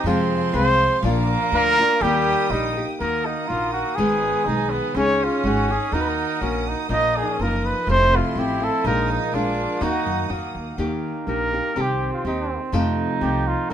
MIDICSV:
0, 0, Header, 1, 6, 480
1, 0, Start_track
1, 0, Key_signature, -3, "major"
1, 0, Tempo, 487805
1, 60, Time_signature, 2, 2, 24, 8
1, 2955, Key_signature, -6, "minor"
1, 13515, End_track
2, 0, Start_track
2, 0, Title_t, "Violin section"
2, 0, Program_c, 0, 48
2, 61, Note_on_c, 0, 77, 72
2, 73, Note_on_c, 0, 68, 85
2, 76, Note_on_c, 0, 84, 88
2, 1021, Note_off_c, 0, 68, 0
2, 1022, Note_off_c, 0, 84, 0
2, 1033, Note_on_c, 0, 70, 88
2, 1033, Note_on_c, 0, 86, 79
2, 1967, Note_off_c, 0, 77, 0
2, 1981, Note_off_c, 0, 86, 0
2, 2004, Note_on_c, 0, 79, 64
2, 2006, Note_on_c, 0, 87, 92
2, 2940, Note_off_c, 0, 70, 0
2, 2954, Note_off_c, 0, 79, 0
2, 2955, Note_off_c, 0, 87, 0
2, 2969, Note_on_c, 0, 78, 61
2, 2970, Note_on_c, 0, 87, 66
2, 2974, Note_on_c, 0, 70, 64
2, 3918, Note_off_c, 0, 78, 0
2, 3921, Note_off_c, 0, 70, 0
2, 3927, Note_on_c, 0, 71, 65
2, 3929, Note_on_c, 0, 80, 64
2, 4852, Note_off_c, 0, 87, 0
2, 4860, Note_on_c, 0, 73, 71
2, 4864, Note_on_c, 0, 87, 81
2, 4872, Note_off_c, 0, 71, 0
2, 5818, Note_off_c, 0, 73, 0
2, 5818, Note_on_c, 0, 78, 65
2, 5821, Note_on_c, 0, 70, 64
2, 5822, Note_off_c, 0, 80, 0
2, 6783, Note_off_c, 0, 78, 0
2, 6784, Note_off_c, 0, 70, 0
2, 6795, Note_on_c, 0, 70, 61
2, 6800, Note_on_c, 0, 75, 68
2, 7727, Note_off_c, 0, 87, 0
2, 7750, Note_off_c, 0, 70, 0
2, 7764, Note_on_c, 0, 84, 72
2, 7765, Note_on_c, 0, 69, 68
2, 8683, Note_on_c, 0, 80, 66
2, 8684, Note_on_c, 0, 87, 77
2, 8688, Note_on_c, 0, 70, 73
2, 8697, Note_off_c, 0, 75, 0
2, 8708, Note_off_c, 0, 69, 0
2, 8708, Note_off_c, 0, 84, 0
2, 9172, Note_off_c, 0, 87, 0
2, 9183, Note_on_c, 0, 86, 68
2, 9642, Note_off_c, 0, 80, 0
2, 9653, Note_on_c, 0, 87, 78
2, 9657, Note_on_c, 0, 78, 63
2, 9658, Note_off_c, 0, 86, 0
2, 10594, Note_off_c, 0, 70, 0
2, 10610, Note_off_c, 0, 87, 0
2, 10612, Note_off_c, 0, 78, 0
2, 13515, End_track
3, 0, Start_track
3, 0, Title_t, "Trumpet"
3, 0, Program_c, 1, 56
3, 538, Note_on_c, 1, 72, 112
3, 988, Note_off_c, 1, 72, 0
3, 1527, Note_on_c, 1, 70, 127
3, 1986, Note_on_c, 1, 67, 108
3, 2001, Note_off_c, 1, 70, 0
3, 2467, Note_on_c, 1, 63, 85
3, 2482, Note_off_c, 1, 67, 0
3, 2837, Note_off_c, 1, 63, 0
3, 2953, Note_on_c, 1, 70, 97
3, 3204, Note_on_c, 1, 63, 78
3, 3219, Note_off_c, 1, 70, 0
3, 3423, Note_on_c, 1, 65, 86
3, 3438, Note_off_c, 1, 63, 0
3, 3661, Note_off_c, 1, 65, 0
3, 3667, Note_on_c, 1, 66, 89
3, 3891, Note_on_c, 1, 68, 99
3, 3905, Note_off_c, 1, 66, 0
3, 4632, Note_off_c, 1, 68, 0
3, 4901, Note_on_c, 1, 73, 114
3, 5158, Note_on_c, 1, 65, 84
3, 5173, Note_off_c, 1, 73, 0
3, 5367, Note_on_c, 1, 66, 97
3, 5382, Note_off_c, 1, 65, 0
3, 5624, Note_on_c, 1, 68, 86
3, 5638, Note_off_c, 1, 66, 0
3, 5835, Note_on_c, 1, 70, 85
3, 5850, Note_off_c, 1, 68, 0
3, 5912, Note_on_c, 1, 71, 83
3, 5927, Note_off_c, 1, 70, 0
3, 5987, Note_on_c, 1, 70, 81
3, 6002, Note_off_c, 1, 71, 0
3, 6573, Note_off_c, 1, 70, 0
3, 6808, Note_on_c, 1, 75, 113
3, 7053, Note_on_c, 1, 68, 88
3, 7067, Note_off_c, 1, 75, 0
3, 7295, Note_on_c, 1, 70, 93
3, 7310, Note_off_c, 1, 68, 0
3, 7537, Note_on_c, 1, 71, 84
3, 7551, Note_off_c, 1, 70, 0
3, 7765, Note_off_c, 1, 71, 0
3, 7778, Note_on_c, 1, 72, 116
3, 8027, Note_on_c, 1, 65, 84
3, 8041, Note_off_c, 1, 72, 0
3, 8254, Note_on_c, 1, 67, 92
3, 8269, Note_off_c, 1, 65, 0
3, 8500, Note_on_c, 1, 69, 96
3, 8514, Note_off_c, 1, 67, 0
3, 8718, Note_off_c, 1, 69, 0
3, 8724, Note_on_c, 1, 70, 105
3, 8950, Note_off_c, 1, 70, 0
3, 8974, Note_on_c, 1, 63, 73
3, 9194, Note_on_c, 1, 65, 82
3, 9209, Note_off_c, 1, 63, 0
3, 9680, Note_on_c, 1, 66, 89
3, 9695, Note_off_c, 1, 65, 0
3, 10153, Note_off_c, 1, 66, 0
3, 11109, Note_on_c, 1, 70, 108
3, 11620, Note_on_c, 1, 67, 90
3, 11634, Note_off_c, 1, 70, 0
3, 11922, Note_off_c, 1, 67, 0
3, 11935, Note_on_c, 1, 65, 66
3, 12070, Note_off_c, 1, 65, 0
3, 12076, Note_on_c, 1, 63, 68
3, 12408, Note_off_c, 1, 63, 0
3, 13009, Note_on_c, 1, 67, 90
3, 13260, Note_on_c, 1, 65, 82
3, 13275, Note_off_c, 1, 67, 0
3, 13482, Note_on_c, 1, 70, 97
3, 13496, Note_off_c, 1, 65, 0
3, 13515, Note_off_c, 1, 70, 0
3, 13515, End_track
4, 0, Start_track
4, 0, Title_t, "Trumpet"
4, 0, Program_c, 2, 56
4, 76, Note_on_c, 2, 60, 96
4, 776, Note_off_c, 2, 60, 0
4, 1033, Note_on_c, 2, 58, 125
4, 1983, Note_on_c, 2, 55, 102
4, 1998, Note_off_c, 2, 58, 0
4, 2719, Note_off_c, 2, 55, 0
4, 2962, Note_on_c, 2, 58, 85
4, 3919, Note_on_c, 2, 59, 88
4, 3934, Note_off_c, 2, 58, 0
4, 4378, Note_on_c, 2, 63, 97
4, 4393, Note_off_c, 2, 59, 0
4, 4625, Note_on_c, 2, 59, 96
4, 4640, Note_off_c, 2, 63, 0
4, 4874, Note_on_c, 2, 61, 110
4, 4889, Note_off_c, 2, 59, 0
4, 5829, Note_on_c, 2, 63, 99
4, 5844, Note_off_c, 2, 61, 0
4, 6310, Note_on_c, 2, 61, 88
4, 6325, Note_off_c, 2, 63, 0
4, 6575, Note_on_c, 2, 63, 85
4, 6590, Note_off_c, 2, 61, 0
4, 6778, Note_off_c, 2, 63, 0
4, 6784, Note_on_c, 2, 63, 87
4, 7460, Note_off_c, 2, 63, 0
4, 7718, Note_on_c, 2, 65, 74
4, 7794, Note_on_c, 2, 64, 90
4, 7808, Note_off_c, 2, 65, 0
4, 8712, Note_on_c, 2, 63, 100
4, 8726, Note_off_c, 2, 64, 0
4, 9191, Note_on_c, 2, 62, 93
4, 9206, Note_off_c, 2, 63, 0
4, 9664, Note_on_c, 2, 63, 89
4, 9678, Note_off_c, 2, 62, 0
4, 10147, Note_on_c, 2, 58, 71
4, 10161, Note_off_c, 2, 63, 0
4, 10618, Note_off_c, 2, 58, 0
4, 10624, Note_on_c, 2, 58, 71
4, 11585, Note_on_c, 2, 60, 82
4, 11600, Note_off_c, 2, 58, 0
4, 12549, Note_on_c, 2, 63, 94
4, 12564, Note_off_c, 2, 60, 0
4, 13493, Note_off_c, 2, 63, 0
4, 13515, End_track
5, 0, Start_track
5, 0, Title_t, "Nylon-string guitar"
5, 0, Program_c, 3, 24
5, 57, Note_on_c, 3, 41, 87
5, 59, Note_on_c, 3, 48, 81
5, 62, Note_on_c, 3, 53, 91
5, 63, Note_on_c, 3, 65, 83
5, 64, Note_on_c, 3, 56, 85
5, 70, Note_on_c, 3, 60, 88
5, 517, Note_off_c, 3, 53, 0
5, 520, Note_off_c, 3, 56, 0
5, 527, Note_off_c, 3, 60, 0
5, 528, Note_on_c, 3, 53, 67
5, 532, Note_on_c, 3, 56, 65
5, 535, Note_off_c, 3, 65, 0
5, 539, Note_on_c, 3, 60, 68
5, 541, Note_off_c, 3, 41, 0
5, 543, Note_off_c, 3, 48, 0
5, 547, Note_on_c, 3, 65, 64
5, 1009, Note_off_c, 3, 53, 0
5, 1018, Note_off_c, 3, 56, 0
5, 1019, Note_off_c, 3, 60, 0
5, 1021, Note_on_c, 3, 46, 83
5, 1021, Note_on_c, 3, 53, 79
5, 1023, Note_on_c, 3, 58, 85
5, 1023, Note_on_c, 3, 62, 86
5, 1026, Note_off_c, 3, 65, 0
5, 1037, Note_on_c, 3, 65, 92
5, 1489, Note_off_c, 3, 53, 0
5, 1501, Note_off_c, 3, 62, 0
5, 1501, Note_on_c, 3, 53, 60
5, 1503, Note_off_c, 3, 46, 0
5, 1504, Note_off_c, 3, 58, 0
5, 1504, Note_off_c, 3, 65, 0
5, 1508, Note_on_c, 3, 58, 60
5, 1513, Note_on_c, 3, 62, 68
5, 1515, Note_on_c, 3, 65, 62
5, 1751, Note_off_c, 3, 65, 0
5, 1752, Note_off_c, 3, 53, 0
5, 1756, Note_off_c, 3, 58, 0
5, 1758, Note_off_c, 3, 62, 0
5, 1763, Note_on_c, 3, 65, 47
5, 1780, Note_on_c, 3, 62, 52
5, 1784, Note_on_c, 3, 58, 48
5, 1990, Note_off_c, 3, 65, 0
5, 1997, Note_off_c, 3, 58, 0
5, 1999, Note_off_c, 3, 62, 0
5, 2007, Note_on_c, 3, 63, 82
5, 2008, Note_on_c, 3, 51, 71
5, 2009, Note_on_c, 3, 58, 88
5, 2016, Note_on_c, 3, 67, 87
5, 2470, Note_off_c, 3, 51, 0
5, 2472, Note_off_c, 3, 58, 0
5, 2474, Note_on_c, 3, 51, 59
5, 2480, Note_off_c, 3, 63, 0
5, 2480, Note_off_c, 3, 67, 0
5, 2484, Note_on_c, 3, 58, 66
5, 2484, Note_on_c, 3, 63, 67
5, 2492, Note_on_c, 3, 67, 62
5, 2712, Note_off_c, 3, 67, 0
5, 2723, Note_off_c, 3, 51, 0
5, 2724, Note_on_c, 3, 67, 55
5, 2725, Note_off_c, 3, 63, 0
5, 2728, Note_off_c, 3, 58, 0
5, 2737, Note_on_c, 3, 63, 46
5, 2744, Note_on_c, 3, 58, 36
5, 2948, Note_off_c, 3, 58, 0
5, 2952, Note_off_c, 3, 63, 0
5, 2955, Note_on_c, 3, 51, 74
5, 2957, Note_off_c, 3, 67, 0
5, 2959, Note_on_c, 3, 58, 62
5, 2964, Note_on_c, 3, 63, 73
5, 2965, Note_on_c, 3, 66, 76
5, 3422, Note_off_c, 3, 58, 0
5, 3426, Note_off_c, 3, 51, 0
5, 3430, Note_on_c, 3, 51, 51
5, 3432, Note_off_c, 3, 66, 0
5, 3434, Note_on_c, 3, 58, 50
5, 3442, Note_off_c, 3, 63, 0
5, 3444, Note_on_c, 3, 66, 54
5, 3446, Note_on_c, 3, 63, 57
5, 3917, Note_off_c, 3, 58, 0
5, 3918, Note_off_c, 3, 51, 0
5, 3918, Note_on_c, 3, 51, 77
5, 3919, Note_on_c, 3, 44, 69
5, 3921, Note_on_c, 3, 59, 80
5, 3923, Note_off_c, 3, 63, 0
5, 3923, Note_off_c, 3, 66, 0
5, 3923, Note_on_c, 3, 56, 78
5, 3927, Note_on_c, 3, 63, 91
5, 3931, Note_on_c, 3, 68, 69
5, 4396, Note_off_c, 3, 56, 0
5, 4399, Note_off_c, 3, 44, 0
5, 4399, Note_off_c, 3, 59, 0
5, 4404, Note_off_c, 3, 68, 0
5, 4408, Note_on_c, 3, 56, 55
5, 4412, Note_on_c, 3, 59, 57
5, 4414, Note_off_c, 3, 63, 0
5, 4418, Note_on_c, 3, 63, 63
5, 4421, Note_on_c, 3, 68, 64
5, 4873, Note_off_c, 3, 51, 0
5, 4874, Note_off_c, 3, 56, 0
5, 4877, Note_on_c, 3, 49, 69
5, 4880, Note_off_c, 3, 68, 0
5, 4881, Note_off_c, 3, 59, 0
5, 4885, Note_on_c, 3, 61, 77
5, 4886, Note_on_c, 3, 56, 71
5, 4888, Note_off_c, 3, 63, 0
5, 4892, Note_on_c, 3, 63, 76
5, 4892, Note_on_c, 3, 68, 74
5, 5347, Note_off_c, 3, 56, 0
5, 5349, Note_off_c, 3, 61, 0
5, 5356, Note_off_c, 3, 49, 0
5, 5359, Note_on_c, 3, 56, 58
5, 5360, Note_on_c, 3, 61, 60
5, 5364, Note_off_c, 3, 68, 0
5, 5370, Note_off_c, 3, 63, 0
5, 5374, Note_on_c, 3, 63, 60
5, 5380, Note_on_c, 3, 68, 59
5, 5597, Note_off_c, 3, 68, 0
5, 5606, Note_off_c, 3, 56, 0
5, 5607, Note_off_c, 3, 61, 0
5, 5609, Note_on_c, 3, 68, 44
5, 5614, Note_off_c, 3, 63, 0
5, 5629, Note_on_c, 3, 61, 36
5, 5629, Note_on_c, 3, 63, 38
5, 5839, Note_off_c, 3, 68, 0
5, 5840, Note_off_c, 3, 63, 0
5, 5841, Note_off_c, 3, 61, 0
5, 5844, Note_on_c, 3, 51, 74
5, 5845, Note_on_c, 3, 58, 72
5, 5852, Note_on_c, 3, 63, 74
5, 5859, Note_on_c, 3, 66, 80
5, 6302, Note_off_c, 3, 51, 0
5, 6306, Note_off_c, 3, 58, 0
5, 6306, Note_off_c, 3, 63, 0
5, 6314, Note_off_c, 3, 66, 0
5, 6314, Note_on_c, 3, 51, 54
5, 6318, Note_on_c, 3, 58, 62
5, 6318, Note_on_c, 3, 63, 54
5, 6326, Note_on_c, 3, 66, 55
5, 6777, Note_off_c, 3, 58, 0
5, 6781, Note_off_c, 3, 63, 0
5, 6789, Note_on_c, 3, 58, 66
5, 6790, Note_off_c, 3, 51, 0
5, 6793, Note_on_c, 3, 63, 79
5, 6794, Note_on_c, 3, 46, 65
5, 6794, Note_on_c, 3, 53, 70
5, 6796, Note_off_c, 3, 66, 0
5, 6800, Note_on_c, 3, 65, 70
5, 7277, Note_off_c, 3, 58, 0
5, 7279, Note_off_c, 3, 63, 0
5, 7280, Note_off_c, 3, 46, 0
5, 7295, Note_off_c, 3, 53, 0
5, 7299, Note_on_c, 3, 53, 56
5, 7299, Note_on_c, 3, 58, 50
5, 7303, Note_off_c, 3, 65, 0
5, 7303, Note_on_c, 3, 63, 51
5, 7307, Note_on_c, 3, 65, 59
5, 7756, Note_off_c, 3, 53, 0
5, 7761, Note_on_c, 3, 41, 66
5, 7767, Note_on_c, 3, 48, 72
5, 7768, Note_off_c, 3, 58, 0
5, 7768, Note_on_c, 3, 53, 83
5, 7769, Note_off_c, 3, 63, 0
5, 7772, Note_on_c, 3, 57, 67
5, 7773, Note_on_c, 3, 60, 72
5, 7774, Note_off_c, 3, 65, 0
5, 8220, Note_off_c, 3, 53, 0
5, 8228, Note_off_c, 3, 57, 0
5, 8231, Note_on_c, 3, 53, 54
5, 8238, Note_off_c, 3, 60, 0
5, 8239, Note_off_c, 3, 41, 0
5, 8240, Note_on_c, 3, 57, 54
5, 8242, Note_off_c, 3, 48, 0
5, 8247, Note_on_c, 3, 65, 59
5, 8250, Note_on_c, 3, 60, 65
5, 8451, Note_off_c, 3, 65, 0
5, 8459, Note_off_c, 3, 60, 0
5, 8462, Note_off_c, 3, 57, 0
5, 8463, Note_on_c, 3, 65, 53
5, 8471, Note_on_c, 3, 60, 43
5, 8472, Note_off_c, 3, 53, 0
5, 8473, Note_on_c, 3, 57, 43
5, 8484, Note_on_c, 3, 53, 38
5, 8700, Note_off_c, 3, 53, 0
5, 8705, Note_off_c, 3, 65, 0
5, 8709, Note_off_c, 3, 60, 0
5, 8710, Note_off_c, 3, 57, 0
5, 8712, Note_on_c, 3, 53, 78
5, 8714, Note_on_c, 3, 46, 70
5, 8717, Note_on_c, 3, 56, 74
5, 8725, Note_on_c, 3, 63, 83
5, 8727, Note_on_c, 3, 65, 78
5, 9177, Note_off_c, 3, 53, 0
5, 9182, Note_off_c, 3, 56, 0
5, 9189, Note_on_c, 3, 53, 64
5, 9190, Note_off_c, 3, 65, 0
5, 9191, Note_off_c, 3, 46, 0
5, 9194, Note_on_c, 3, 56, 63
5, 9197, Note_off_c, 3, 63, 0
5, 9202, Note_on_c, 3, 65, 62
5, 9206, Note_on_c, 3, 62, 67
5, 9654, Note_off_c, 3, 53, 0
5, 9657, Note_off_c, 3, 56, 0
5, 9657, Note_on_c, 3, 51, 82
5, 9661, Note_on_c, 3, 58, 79
5, 9664, Note_off_c, 3, 62, 0
5, 9668, Note_off_c, 3, 65, 0
5, 9668, Note_on_c, 3, 63, 80
5, 9672, Note_on_c, 3, 66, 75
5, 10123, Note_off_c, 3, 58, 0
5, 10125, Note_off_c, 3, 66, 0
5, 10126, Note_off_c, 3, 51, 0
5, 10129, Note_off_c, 3, 63, 0
5, 10130, Note_on_c, 3, 51, 59
5, 10133, Note_on_c, 3, 63, 57
5, 10134, Note_on_c, 3, 58, 53
5, 10137, Note_on_c, 3, 66, 61
5, 10600, Note_off_c, 3, 51, 0
5, 10602, Note_off_c, 3, 58, 0
5, 10606, Note_off_c, 3, 63, 0
5, 10612, Note_on_c, 3, 51, 77
5, 10613, Note_on_c, 3, 58, 84
5, 10617, Note_off_c, 3, 66, 0
5, 10618, Note_on_c, 3, 63, 74
5, 10621, Note_on_c, 3, 67, 80
5, 11083, Note_off_c, 3, 58, 0
5, 11085, Note_off_c, 3, 51, 0
5, 11088, Note_off_c, 3, 63, 0
5, 11093, Note_off_c, 3, 67, 0
5, 11095, Note_on_c, 3, 58, 59
5, 11097, Note_on_c, 3, 51, 53
5, 11100, Note_on_c, 3, 63, 50
5, 11105, Note_on_c, 3, 67, 49
5, 11333, Note_off_c, 3, 67, 0
5, 11341, Note_off_c, 3, 63, 0
5, 11345, Note_on_c, 3, 67, 40
5, 11350, Note_off_c, 3, 58, 0
5, 11351, Note_off_c, 3, 51, 0
5, 11353, Note_on_c, 3, 63, 42
5, 11366, Note_on_c, 3, 58, 39
5, 11563, Note_off_c, 3, 63, 0
5, 11566, Note_off_c, 3, 58, 0
5, 11568, Note_on_c, 3, 48, 66
5, 11570, Note_on_c, 3, 60, 80
5, 11571, Note_off_c, 3, 67, 0
5, 11573, Note_on_c, 3, 51, 64
5, 11574, Note_on_c, 3, 63, 69
5, 11583, Note_on_c, 3, 67, 81
5, 12037, Note_off_c, 3, 51, 0
5, 12038, Note_off_c, 3, 60, 0
5, 12043, Note_off_c, 3, 63, 0
5, 12049, Note_on_c, 3, 51, 46
5, 12050, Note_on_c, 3, 60, 57
5, 12054, Note_on_c, 3, 63, 60
5, 12056, Note_off_c, 3, 48, 0
5, 12059, Note_off_c, 3, 67, 0
5, 12070, Note_on_c, 3, 67, 66
5, 12519, Note_on_c, 3, 41, 82
5, 12523, Note_off_c, 3, 60, 0
5, 12525, Note_on_c, 3, 48, 84
5, 12527, Note_on_c, 3, 57, 90
5, 12529, Note_off_c, 3, 51, 0
5, 12530, Note_off_c, 3, 67, 0
5, 12531, Note_off_c, 3, 63, 0
5, 12533, Note_on_c, 3, 53, 82
5, 12534, Note_on_c, 3, 65, 88
5, 12535, Note_on_c, 3, 60, 93
5, 12998, Note_off_c, 3, 53, 0
5, 13001, Note_off_c, 3, 57, 0
5, 13006, Note_off_c, 3, 60, 0
5, 13008, Note_off_c, 3, 41, 0
5, 13010, Note_on_c, 3, 53, 59
5, 13011, Note_off_c, 3, 48, 0
5, 13012, Note_on_c, 3, 57, 54
5, 13015, Note_off_c, 3, 65, 0
5, 13018, Note_on_c, 3, 60, 59
5, 13027, Note_on_c, 3, 65, 65
5, 13473, Note_off_c, 3, 53, 0
5, 13482, Note_on_c, 3, 46, 73
5, 13483, Note_off_c, 3, 65, 0
5, 13485, Note_on_c, 3, 53, 76
5, 13488, Note_off_c, 3, 57, 0
5, 13490, Note_off_c, 3, 60, 0
5, 13515, Note_off_c, 3, 46, 0
5, 13515, Note_off_c, 3, 53, 0
5, 13515, End_track
6, 0, Start_track
6, 0, Title_t, "Upright bass"
6, 0, Program_c, 4, 32
6, 35, Note_on_c, 4, 41, 93
6, 357, Note_off_c, 4, 41, 0
6, 525, Note_on_c, 4, 36, 98
6, 843, Note_off_c, 4, 36, 0
6, 1008, Note_on_c, 4, 34, 106
6, 1326, Note_off_c, 4, 34, 0
6, 1492, Note_on_c, 4, 38, 94
6, 1809, Note_off_c, 4, 38, 0
6, 1978, Note_on_c, 4, 39, 106
6, 2295, Note_off_c, 4, 39, 0
6, 2459, Note_on_c, 4, 34, 90
6, 2778, Note_off_c, 4, 34, 0
6, 2956, Note_on_c, 4, 39, 80
6, 3271, Note_off_c, 4, 39, 0
6, 3445, Note_on_c, 4, 34, 77
6, 3756, Note_off_c, 4, 34, 0
6, 3913, Note_on_c, 4, 32, 91
6, 4227, Note_off_c, 4, 32, 0
6, 4389, Note_on_c, 4, 35, 83
6, 4703, Note_off_c, 4, 35, 0
6, 4867, Note_on_c, 4, 37, 96
6, 5182, Note_off_c, 4, 37, 0
6, 5350, Note_on_c, 4, 32, 86
6, 5664, Note_off_c, 4, 32, 0
6, 5825, Note_on_c, 4, 39, 99
6, 6142, Note_off_c, 4, 39, 0
6, 6310, Note_on_c, 4, 34, 81
6, 6627, Note_off_c, 4, 34, 0
6, 6780, Note_on_c, 4, 34, 93
6, 7100, Note_off_c, 4, 34, 0
6, 7273, Note_on_c, 4, 30, 85
6, 7588, Note_off_c, 4, 30, 0
6, 7744, Note_on_c, 4, 29, 97
6, 8060, Note_off_c, 4, 29, 0
6, 8220, Note_on_c, 4, 33, 83
6, 8536, Note_off_c, 4, 33, 0
6, 8702, Note_on_c, 4, 34, 102
6, 9016, Note_off_c, 4, 34, 0
6, 9179, Note_on_c, 4, 34, 83
6, 9492, Note_off_c, 4, 34, 0
6, 9651, Note_on_c, 4, 39, 106
6, 9818, Note_off_c, 4, 39, 0
6, 9903, Note_on_c, 4, 42, 84
6, 10117, Note_off_c, 4, 42, 0
6, 10133, Note_on_c, 4, 41, 77
6, 10363, Note_off_c, 4, 41, 0
6, 10379, Note_on_c, 4, 39, 68
6, 10595, Note_off_c, 4, 39, 0
6, 10607, Note_on_c, 4, 39, 86
6, 10926, Note_off_c, 4, 39, 0
6, 11089, Note_on_c, 4, 34, 74
6, 11406, Note_off_c, 4, 34, 0
6, 11577, Note_on_c, 4, 36, 87
6, 11891, Note_off_c, 4, 36, 0
6, 12050, Note_on_c, 4, 39, 82
6, 12365, Note_off_c, 4, 39, 0
6, 12522, Note_on_c, 4, 41, 91
6, 12839, Note_off_c, 4, 41, 0
6, 13000, Note_on_c, 4, 36, 94
6, 13319, Note_off_c, 4, 36, 0
6, 13515, End_track
0, 0, End_of_file